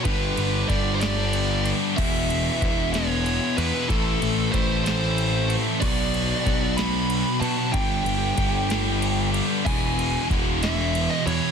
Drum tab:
CC |------|x-----|------|x-----|
RD |xxxxxx|-xxxxx|xxxxxx|-xxxxx|
SD |---o--|---o--|---o--|---o--|
BD |o-o---|o-o---|o-o---|o-o---|

CC |------|x-----|
RD |xxxxxx|-xxxxx|
SD |---o--|---o--|
BD |o-o---|o-o---|